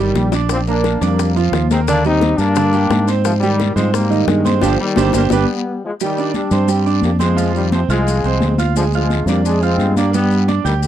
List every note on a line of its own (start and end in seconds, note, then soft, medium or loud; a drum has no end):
0.00 0.11 G1 medium
0.00 0.31 D#3 medium
0.00 0.27 G3 medium
0.00 0.31 G3 medium
0.00 0.27 G4 medium
0.00 0.27 G5 medium
0.14 0.95 A#1 medium
0.14 low bongo medium
0.14 high conga medium
0.14 short guiro medium
0.14 maracas soft
0.32 0.61 D4 medium
0.32 0.62 D5 medium
0.32 0.62 D6 medium
0.32 low bongo medium
0.32 short guiro medium
0.32 maracas medium
0.49 0.59 F3 medium
0.49 0.59 C4 loud
0.49 high bongo medium
0.49 high conga soft
0.49 long guiro medium
0.49 maracas medium
0.67 0.99 A#3 medium
0.67 0.96 A#3 medium
0.67 1.00 D4 medium
0.67 0.96 A#4 medium
0.67 0.96 A#5 medium
0.67 high bongo soft
0.67 high conga soft
0.67 maracas soft
0.84 high bongo medium
0.84 high conga medium
0.84 short guiro medium
0.84 maracas soft
1.01 1.50 F2 medium
1.01 1.37 G3 medium
1.01 1.37 A#3 medium
1.01 1.30 D4 medium
1.01 1.30 D5 medium
1.01 1.30 D6 medium
1.01 high conga soft
1.01 low conga medium
1.01 short guiro medium
1.01 maracas medium
1.19 high bongo medium
1.19 long guiro medium
1.19 maracas medium
1.36 1.64 F3 medium
1.36 1.64 F4 medium
1.36 1.65 F5 medium
1.36 high bongo soft
1.36 high conga soft
1.36 maracas soft
1.52 2.33 D#2 medium
1.52 high bongo medium
1.52 low bongo medium
1.52 high conga medium
1.52 short guiro medium
1.52 maracas soft
1.71 1.79 G#3 medium
1.71 1.85 A#3 medium
1.71 1.79 C4 medium
1.71 1.85 A#4 medium
1.71 1.85 A#5 medium
1.71 high bongo soft
1.71 high conga medium
1.71 short guiro medium
1.71 maracas medium
1.87 2.02 D3 medium
1.87 2.04 A#3 medium
1.87 2.03 D4 loud
1.87 2.02 D4 medium
1.87 2.03 D5 medium
1.87 high bongo medium
1.87 high conga soft
1.87 long guiro medium
1.87 maracas medium
2.04 2.33 G3 medium
2.04 2.38 C4 medium
2.04 2.37 D#4 loud
2.04 2.34 G4 medium
2.04 2.34 G5 medium
2.04 high conga soft
2.04 maracas soft
2.21 high bongo medium
2.21 high conga medium
2.21 short guiro medium
2.21 maracas soft
2.38 2.87 G2 medium
2.38 2.53 A#3 medium
2.38 3.09 A#3 medium
2.38 3.07 D4 loud
2.38 2.54 A#4 medium
2.38 2.54 A#5 medium
2.38 high bongo soft
2.38 short guiro medium
2.38 maracas medium
2.55 2.71 D3 medium
2.55 2.71 D4 medium
2.55 2.71 D5 medium
2.55 high bongo medium
2.55 high conga soft
2.55 long guiro medium
2.55 maracas medium
2.73 3.02 G3 medium
2.73 3.02 G4 medium
2.73 3.02 G5 medium
2.73 high bongo soft
2.73 high conga soft
2.73 maracas soft
2.90 3.71 G#2 medium
2.90 high bongo medium
2.90 low bongo medium
2.90 high conga medium
2.90 short guiro medium
2.90 maracas soft
3.07 3.36 C4 medium
3.07 3.36 C5 medium
3.07 3.36 C6 medium
3.07 high bongo soft
3.07 short guiro medium
3.07 maracas medium
3.23 3.34 C3 medium
3.23 3.31 F3 loud
3.23 high bongo medium
3.23 high conga soft
3.23 long guiro medium
3.23 maracas medium
3.40 3.75 D#3 medium
3.40 3.73 G3 loud
3.40 3.71 G3 medium
3.40 3.71 G4 medium
3.40 3.71 G5 medium
3.40 high bongo soft
3.40 maracas soft
3.60 high bongo medium
3.60 high conga medium
3.60 short guiro medium
3.60 maracas soft
3.75 4.24 G#2 medium
3.75 3.93 F3 medium
3.75 3.92 G#3 medium
3.75 4.05 C4 medium
3.75 4.05 C5 medium
3.75 4.05 C6 medium
3.75 high conga soft
3.75 low conga medium
3.75 short guiro medium
3.75 maracas medium
3.92 4.27 G3 medium
3.92 4.25 A#3 medium
3.92 high bongo medium
3.92 high conga soft
3.92 long guiro medium
3.92 maracas medium
4.10 4.39 D#3 medium
4.10 4.39 D#4 medium
4.10 4.39 D#5 medium
4.10 high bongo soft
4.10 high conga soft
4.10 maracas soft
4.27 4.60 G2 medium
4.27 4.61 D#3 medium
4.27 4.60 G#3 medium
4.27 high bongo medium
4.27 low bongo medium
4.27 high conga medium
4.27 short guiro medium
4.27 maracas soft
4.44 4.59 C4 medium
4.44 4.60 C5 medium
4.44 4.60 C6 medium
4.44 high bongo soft
4.44 high conga medium
4.44 short guiro medium
4.44 maracas medium
4.61 4.75 G1 loud
4.61 4.80 D3 medium
4.61 4.78 F3 loud
4.61 4.74 D4 loud
4.61 4.74 G4 loud
4.61 4.74 C5 loud
4.61 low bongo loud
4.61 high conga loud
4.61 long guiro loud
4.61 maracas loud
4.78 5.13 D#3 medium
4.78 5.11 G3 medium
4.96 5.10 G1 medium
4.96 5.08 D4 loud
4.96 5.08 G4 loud
4.96 5.09 C5 loud
4.96 low bongo medium
4.96 high conga medium
4.96 long guiro medium
4.96 maracas medium
5.13 5.27 G1 medium
5.13 5.24 G3 medium
5.13 5.22 A#3 medium
5.13 5.25 D4 medium
5.13 5.26 G4 loud
5.13 5.26 C5 medium
5.13 low bongo loud
5.13 high conga loud
5.13 long guiro medium
5.13 maracas loud
5.30 5.44 G1 medium
5.30 5.80 G3 medium
5.30 5.80 B3 medium
5.30 5.43 D4 loud
5.30 5.43 G4 loud
5.30 5.43 B4 loud
5.30 low bongo loud
5.30 high conga medium
5.30 long guiro loud
5.30 maracas loud
5.84 5.92 F3 medium
5.84 5.92 G#3 medium
6.00 6.33 D#3 medium
6.00 6.33 G3 medium
6.00 6.15 G3 medium
6.00 6.15 G4 medium
6.00 6.15 G5 medium
6.00 high conga soft
6.00 long guiro medium
6.00 maracas medium
6.17 6.47 D4 medium
6.17 6.46 D5 medium
6.17 6.47 D6 medium
6.17 high conga soft
6.17 maracas soft
6.34 6.67 G3 medium
6.34 6.67 D4 medium
6.34 high conga medium
6.34 short guiro medium
6.34 maracas soft
6.51 7.00 G2 loud
6.51 6.66 C4 medium
6.51 6.66 C5 medium
6.51 6.67 C6 medium
6.51 high conga soft
6.51 low conga medium
6.51 short guiro medium
6.51 maracas medium
6.68 6.83 G3 medium
6.68 7.03 G3 medium
6.68 7.04 C4 medium
6.68 6.83 G4 medium
6.68 6.83 G5 medium
6.68 high conga soft
6.68 long guiro medium
6.68 maracas medium
6.85 7.15 D4 medium
6.85 7.15 D5 medium
6.85 7.15 D6 medium
6.85 high conga soft
6.85 maracas soft
7.02 7.83 F2 medium
7.02 7.12 G3 medium
7.02 7.11 A#3 medium
7.02 high conga medium
7.02 short guiro medium
7.02 maracas soft
7.19 7.53 F3 medium
7.19 7.52 G#3 medium
7.19 7.34 C4 medium
7.19 7.34 C5 medium
7.19 7.34 C6 medium
7.19 high conga medium
7.19 short guiro medium
7.19 maracas medium
7.36 7.65 F3 medium
7.36 7.66 F4 medium
7.36 7.66 F5 medium
7.36 high conga soft
7.36 long guiro medium
7.36 maracas medium
7.54 7.72 D#3 medium
7.54 7.71 G3 medium
7.54 high conga soft
7.54 maracas soft
7.72 7.82 C3 medium
7.72 7.80 F3 medium
7.72 7.86 C4 medium
7.72 7.87 C5 medium
7.72 7.87 C6 medium
7.72 high conga medium
7.72 short guiro medium
7.72 maracas soft
7.89 8.21 C2 medium
7.89 8.55 F3 medium
7.89 8.54 G#3 medium
7.89 8.18 F4 medium
7.89 8.18 F5 medium
7.89 8.18 F6 medium
7.89 short guiro medium
7.89 maracas medium
8.07 high conga soft
8.07 long guiro medium
8.07 maracas medium
8.24 8.40 C2 medium
8.24 8.53 C4 medium
8.24 8.53 C5 medium
8.24 8.53 C6 medium
8.24 high conga soft
8.24 maracas soft
8.40 9.21 D2 medium
8.40 high conga medium
8.40 short guiro medium
8.40 maracas soft
8.58 8.72 F4 medium
8.58 8.73 F5 medium
8.58 8.73 F6 medium
8.58 high conga medium
8.58 short guiro medium
8.58 maracas medium
8.75 8.84 D3 medium
8.75 8.83 F3 medium
8.75 8.91 G#3 medium
8.75 8.90 G#4 medium
8.75 8.91 G#5 medium
8.75 high conga soft
8.75 long guiro medium
8.75 maracas loud
8.92 9.25 F3 medium
8.92 9.25 G#3 medium
8.92 9.22 F4 medium
8.92 9.22 F5 medium
8.92 9.22 F6 medium
8.92 high conga soft
8.92 maracas soft
9.10 high conga medium
9.10 short guiro medium
9.10 maracas soft
9.26 9.75 F2 medium
9.26 9.45 G3 medium
9.26 9.44 A#3 medium
9.26 9.42 D4 medium
9.26 9.42 D5 medium
9.26 9.43 D6 medium
9.26 high conga soft
9.26 low conga medium
9.26 short guiro medium
9.26 maracas medium
9.43 9.61 G#3 medium
9.43 9.59 G#3 medium
9.43 9.60 D4 medium
9.43 9.60 G#4 medium
9.43 9.60 G#5 medium
9.43 high conga soft
9.43 long guiro medium
9.43 maracas medium
9.61 9.97 G#3 medium
9.61 9.96 C4 loud
9.61 9.90 F4 medium
9.61 9.91 F5 medium
9.61 9.91 F6 medium
9.61 high conga soft
9.61 maracas soft
9.78 10.59 G2 medium
9.78 high conga medium
9.78 short guiro medium
9.78 maracas soft
9.96 10.13 G3 medium
9.96 10.13 A#3 medium
9.96 10.11 D4 medium
9.96 10.12 D5 medium
9.96 10.12 D6 medium
9.96 high conga medium
9.96 short guiro medium
9.96 maracas medium
10.13 10.42 G3 medium
10.13 10.46 G3 medium
10.13 10.45 B3 loud
10.13 10.42 G4 medium
10.13 10.43 G5 medium
10.13 high conga soft
10.13 long guiro medium
10.13 maracas medium
10.31 maracas soft
10.48 10.62 D4 medium
10.48 10.62 D5 medium
10.48 10.62 D6 medium
10.48 high conga medium
10.48 short guiro medium
10.48 maracas soft
10.64 10.87 D2 medium
10.64 10.74 D#3 medium
10.64 10.72 G3 medium
10.64 10.87 G4 medium
10.64 10.87 G5 medium
10.64 10.87 G6 medium
10.64 short guiro medium
10.64 maracas medium
10.82 10.87 D3 medium
10.82 10.87 G3 medium
10.82 high conga soft
10.82 long guiro medium
10.82 maracas medium